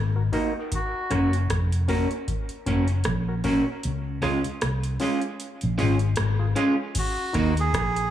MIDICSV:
0, 0, Header, 1, 7, 480
1, 0, Start_track
1, 0, Tempo, 779221
1, 444, Time_signature, 4, 2, 24, 8
1, 4993, End_track
2, 0, Start_track
2, 0, Title_t, "Melodica"
2, 0, Program_c, 0, 22
2, 460, Note_on_c, 0, 66, 92
2, 838, Note_off_c, 0, 66, 0
2, 4302, Note_on_c, 0, 66, 86
2, 4643, Note_off_c, 0, 66, 0
2, 4683, Note_on_c, 0, 68, 100
2, 4993, Note_off_c, 0, 68, 0
2, 4993, End_track
3, 0, Start_track
3, 0, Title_t, "Synth stab"
3, 0, Program_c, 1, 62
3, 98, Note_on_c, 1, 66, 44
3, 98, Note_on_c, 1, 70, 48
3, 140, Note_off_c, 1, 66, 0
3, 140, Note_off_c, 1, 70, 0
3, 199, Note_on_c, 1, 63, 83
3, 202, Note_on_c, 1, 66, 86
3, 207, Note_on_c, 1, 70, 102
3, 326, Note_off_c, 1, 63, 0
3, 327, Note_off_c, 1, 66, 0
3, 329, Note_off_c, 1, 70, 0
3, 679, Note_on_c, 1, 61, 85
3, 682, Note_on_c, 1, 66, 75
3, 685, Note_on_c, 1, 70, 90
3, 806, Note_off_c, 1, 61, 0
3, 807, Note_off_c, 1, 66, 0
3, 809, Note_off_c, 1, 70, 0
3, 1158, Note_on_c, 1, 61, 86
3, 1162, Note_on_c, 1, 66, 89
3, 1166, Note_on_c, 1, 70, 109
3, 1285, Note_off_c, 1, 61, 0
3, 1287, Note_off_c, 1, 66, 0
3, 1289, Note_off_c, 1, 70, 0
3, 1640, Note_on_c, 1, 61, 87
3, 1646, Note_on_c, 1, 66, 77
3, 1649, Note_on_c, 1, 70, 87
3, 1766, Note_off_c, 1, 61, 0
3, 1769, Note_off_c, 1, 66, 0
3, 1771, Note_off_c, 1, 70, 0
3, 2023, Note_on_c, 1, 70, 45
3, 2024, Note_on_c, 1, 66, 41
3, 2063, Note_off_c, 1, 66, 0
3, 2063, Note_off_c, 1, 70, 0
3, 2119, Note_on_c, 1, 61, 92
3, 2123, Note_on_c, 1, 66, 80
3, 2127, Note_on_c, 1, 70, 96
3, 2246, Note_off_c, 1, 61, 0
3, 2248, Note_off_c, 1, 66, 0
3, 2250, Note_off_c, 1, 70, 0
3, 2597, Note_on_c, 1, 61, 81
3, 2602, Note_on_c, 1, 65, 72
3, 2604, Note_on_c, 1, 68, 88
3, 2725, Note_off_c, 1, 61, 0
3, 2728, Note_off_c, 1, 65, 0
3, 2728, Note_off_c, 1, 68, 0
3, 3079, Note_on_c, 1, 61, 85
3, 3083, Note_on_c, 1, 65, 88
3, 3086, Note_on_c, 1, 68, 96
3, 3206, Note_off_c, 1, 61, 0
3, 3208, Note_off_c, 1, 65, 0
3, 3209, Note_off_c, 1, 68, 0
3, 3559, Note_on_c, 1, 61, 88
3, 3562, Note_on_c, 1, 65, 75
3, 3565, Note_on_c, 1, 68, 96
3, 3686, Note_off_c, 1, 61, 0
3, 3687, Note_off_c, 1, 65, 0
3, 3689, Note_off_c, 1, 68, 0
3, 3938, Note_on_c, 1, 65, 40
3, 3939, Note_on_c, 1, 68, 44
3, 3981, Note_off_c, 1, 65, 0
3, 3981, Note_off_c, 1, 68, 0
3, 4038, Note_on_c, 1, 61, 84
3, 4041, Note_on_c, 1, 65, 81
3, 4045, Note_on_c, 1, 68, 92
3, 4165, Note_off_c, 1, 61, 0
3, 4167, Note_off_c, 1, 65, 0
3, 4169, Note_off_c, 1, 68, 0
3, 4517, Note_on_c, 1, 63, 86
3, 4523, Note_on_c, 1, 66, 80
3, 4525, Note_on_c, 1, 70, 87
3, 4645, Note_off_c, 1, 63, 0
3, 4648, Note_off_c, 1, 66, 0
3, 4649, Note_off_c, 1, 70, 0
3, 4993, End_track
4, 0, Start_track
4, 0, Title_t, "Clean electric guitar"
4, 0, Program_c, 2, 27
4, 203, Note_on_c, 2, 58, 78
4, 206, Note_on_c, 2, 63, 94
4, 210, Note_on_c, 2, 66, 90
4, 299, Note_off_c, 2, 58, 0
4, 300, Note_off_c, 2, 63, 0
4, 302, Note_off_c, 2, 66, 0
4, 682, Note_on_c, 2, 58, 87
4, 689, Note_on_c, 2, 61, 97
4, 692, Note_on_c, 2, 66, 88
4, 778, Note_off_c, 2, 58, 0
4, 782, Note_off_c, 2, 61, 0
4, 783, Note_off_c, 2, 66, 0
4, 1163, Note_on_c, 2, 58, 85
4, 1168, Note_on_c, 2, 61, 86
4, 1172, Note_on_c, 2, 66, 87
4, 1259, Note_off_c, 2, 58, 0
4, 1262, Note_off_c, 2, 61, 0
4, 1263, Note_off_c, 2, 66, 0
4, 1647, Note_on_c, 2, 58, 72
4, 1650, Note_on_c, 2, 61, 90
4, 1655, Note_on_c, 2, 66, 83
4, 1741, Note_off_c, 2, 58, 0
4, 1743, Note_off_c, 2, 61, 0
4, 1745, Note_off_c, 2, 66, 0
4, 2122, Note_on_c, 2, 58, 78
4, 2130, Note_on_c, 2, 61, 84
4, 2132, Note_on_c, 2, 66, 86
4, 2218, Note_off_c, 2, 58, 0
4, 2223, Note_off_c, 2, 61, 0
4, 2223, Note_off_c, 2, 66, 0
4, 2600, Note_on_c, 2, 56, 80
4, 2603, Note_on_c, 2, 61, 84
4, 2608, Note_on_c, 2, 65, 85
4, 2698, Note_off_c, 2, 56, 0
4, 2699, Note_off_c, 2, 61, 0
4, 2702, Note_off_c, 2, 65, 0
4, 3088, Note_on_c, 2, 56, 80
4, 3093, Note_on_c, 2, 61, 86
4, 3097, Note_on_c, 2, 65, 87
4, 3182, Note_off_c, 2, 56, 0
4, 3184, Note_off_c, 2, 61, 0
4, 3186, Note_off_c, 2, 65, 0
4, 3561, Note_on_c, 2, 56, 93
4, 3565, Note_on_c, 2, 61, 90
4, 3571, Note_on_c, 2, 65, 94
4, 3658, Note_off_c, 2, 56, 0
4, 3660, Note_off_c, 2, 61, 0
4, 3663, Note_off_c, 2, 65, 0
4, 4040, Note_on_c, 2, 56, 70
4, 4043, Note_on_c, 2, 61, 80
4, 4048, Note_on_c, 2, 65, 81
4, 4137, Note_off_c, 2, 56, 0
4, 4139, Note_off_c, 2, 61, 0
4, 4141, Note_off_c, 2, 65, 0
4, 4528, Note_on_c, 2, 58, 82
4, 4532, Note_on_c, 2, 63, 82
4, 4535, Note_on_c, 2, 66, 85
4, 4621, Note_off_c, 2, 58, 0
4, 4623, Note_off_c, 2, 63, 0
4, 4625, Note_off_c, 2, 66, 0
4, 4993, End_track
5, 0, Start_track
5, 0, Title_t, "Fingered electric bass"
5, 0, Program_c, 3, 33
5, 0, Note_on_c, 3, 32, 92
5, 178, Note_off_c, 3, 32, 0
5, 688, Note_on_c, 3, 30, 93
5, 898, Note_off_c, 3, 30, 0
5, 926, Note_on_c, 3, 29, 79
5, 1257, Note_off_c, 3, 29, 0
5, 1646, Note_on_c, 3, 30, 80
5, 1858, Note_off_c, 3, 30, 0
5, 1886, Note_on_c, 3, 34, 92
5, 2217, Note_off_c, 3, 34, 0
5, 2372, Note_on_c, 3, 37, 93
5, 2581, Note_off_c, 3, 37, 0
5, 2611, Note_on_c, 3, 37, 91
5, 2727, Note_off_c, 3, 37, 0
5, 2850, Note_on_c, 3, 36, 77
5, 3060, Note_off_c, 3, 36, 0
5, 3470, Note_on_c, 3, 34, 74
5, 3558, Note_off_c, 3, 34, 0
5, 3570, Note_on_c, 3, 32, 83
5, 3780, Note_off_c, 3, 32, 0
5, 3814, Note_on_c, 3, 32, 95
5, 4022, Note_off_c, 3, 32, 0
5, 4526, Note_on_c, 3, 39, 96
5, 4737, Note_off_c, 3, 39, 0
5, 4769, Note_on_c, 3, 34, 72
5, 4993, Note_off_c, 3, 34, 0
5, 4993, End_track
6, 0, Start_track
6, 0, Title_t, "Muted clean electric guitar strokes"
6, 1783, Note_on_c, 9, 29, 45
6, 1845, Note_off_c, 9, 29, 0
6, 4993, End_track
7, 0, Start_track
7, 0, Title_t, "Drums"
7, 201, Note_on_c, 9, 36, 82
7, 202, Note_on_c, 9, 46, 64
7, 262, Note_off_c, 9, 36, 0
7, 264, Note_off_c, 9, 46, 0
7, 442, Note_on_c, 9, 36, 108
7, 442, Note_on_c, 9, 42, 91
7, 503, Note_off_c, 9, 42, 0
7, 504, Note_off_c, 9, 36, 0
7, 682, Note_on_c, 9, 36, 77
7, 682, Note_on_c, 9, 42, 57
7, 686, Note_on_c, 9, 37, 59
7, 743, Note_off_c, 9, 42, 0
7, 744, Note_off_c, 9, 36, 0
7, 747, Note_off_c, 9, 37, 0
7, 820, Note_on_c, 9, 42, 50
7, 882, Note_off_c, 9, 42, 0
7, 921, Note_on_c, 9, 36, 112
7, 924, Note_on_c, 9, 42, 87
7, 926, Note_on_c, 9, 37, 103
7, 982, Note_off_c, 9, 36, 0
7, 985, Note_off_c, 9, 42, 0
7, 988, Note_off_c, 9, 37, 0
7, 1062, Note_on_c, 9, 42, 54
7, 1124, Note_off_c, 9, 42, 0
7, 1161, Note_on_c, 9, 46, 68
7, 1163, Note_on_c, 9, 36, 76
7, 1223, Note_off_c, 9, 46, 0
7, 1224, Note_off_c, 9, 36, 0
7, 1298, Note_on_c, 9, 42, 39
7, 1360, Note_off_c, 9, 42, 0
7, 1403, Note_on_c, 9, 36, 112
7, 1404, Note_on_c, 9, 42, 76
7, 1465, Note_off_c, 9, 36, 0
7, 1466, Note_off_c, 9, 42, 0
7, 1534, Note_on_c, 9, 42, 43
7, 1595, Note_off_c, 9, 42, 0
7, 1641, Note_on_c, 9, 36, 94
7, 1642, Note_on_c, 9, 42, 69
7, 1703, Note_off_c, 9, 36, 0
7, 1703, Note_off_c, 9, 42, 0
7, 1772, Note_on_c, 9, 42, 43
7, 1833, Note_off_c, 9, 42, 0
7, 1871, Note_on_c, 9, 42, 82
7, 1880, Note_on_c, 9, 37, 95
7, 1882, Note_on_c, 9, 36, 95
7, 1933, Note_off_c, 9, 42, 0
7, 1941, Note_off_c, 9, 37, 0
7, 1943, Note_off_c, 9, 36, 0
7, 2118, Note_on_c, 9, 46, 69
7, 2120, Note_on_c, 9, 36, 90
7, 2180, Note_off_c, 9, 46, 0
7, 2182, Note_off_c, 9, 36, 0
7, 2362, Note_on_c, 9, 42, 81
7, 2423, Note_off_c, 9, 42, 0
7, 2600, Note_on_c, 9, 46, 41
7, 2604, Note_on_c, 9, 37, 57
7, 2661, Note_off_c, 9, 46, 0
7, 2665, Note_off_c, 9, 37, 0
7, 2737, Note_on_c, 9, 42, 56
7, 2799, Note_off_c, 9, 42, 0
7, 2842, Note_on_c, 9, 42, 83
7, 2845, Note_on_c, 9, 37, 109
7, 2904, Note_off_c, 9, 42, 0
7, 2907, Note_off_c, 9, 37, 0
7, 2978, Note_on_c, 9, 42, 56
7, 3040, Note_off_c, 9, 42, 0
7, 3078, Note_on_c, 9, 46, 77
7, 3139, Note_off_c, 9, 46, 0
7, 3212, Note_on_c, 9, 42, 39
7, 3274, Note_off_c, 9, 42, 0
7, 3324, Note_on_c, 9, 42, 64
7, 3386, Note_off_c, 9, 42, 0
7, 3456, Note_on_c, 9, 42, 45
7, 3518, Note_off_c, 9, 42, 0
7, 3564, Note_on_c, 9, 46, 49
7, 3626, Note_off_c, 9, 46, 0
7, 3692, Note_on_c, 9, 42, 46
7, 3753, Note_off_c, 9, 42, 0
7, 3793, Note_on_c, 9, 42, 76
7, 3801, Note_on_c, 9, 37, 96
7, 3854, Note_off_c, 9, 42, 0
7, 3863, Note_off_c, 9, 37, 0
7, 4042, Note_on_c, 9, 42, 71
7, 4103, Note_off_c, 9, 42, 0
7, 4280, Note_on_c, 9, 42, 90
7, 4281, Note_on_c, 9, 49, 108
7, 4283, Note_on_c, 9, 36, 112
7, 4342, Note_off_c, 9, 42, 0
7, 4343, Note_off_c, 9, 49, 0
7, 4345, Note_off_c, 9, 36, 0
7, 4523, Note_on_c, 9, 42, 59
7, 4524, Note_on_c, 9, 36, 85
7, 4527, Note_on_c, 9, 37, 62
7, 4585, Note_off_c, 9, 36, 0
7, 4585, Note_off_c, 9, 42, 0
7, 4589, Note_off_c, 9, 37, 0
7, 4664, Note_on_c, 9, 42, 57
7, 4725, Note_off_c, 9, 42, 0
7, 4763, Note_on_c, 9, 36, 122
7, 4768, Note_on_c, 9, 42, 91
7, 4771, Note_on_c, 9, 37, 118
7, 4824, Note_off_c, 9, 36, 0
7, 4830, Note_off_c, 9, 42, 0
7, 4833, Note_off_c, 9, 37, 0
7, 4906, Note_on_c, 9, 42, 60
7, 4967, Note_off_c, 9, 42, 0
7, 4993, End_track
0, 0, End_of_file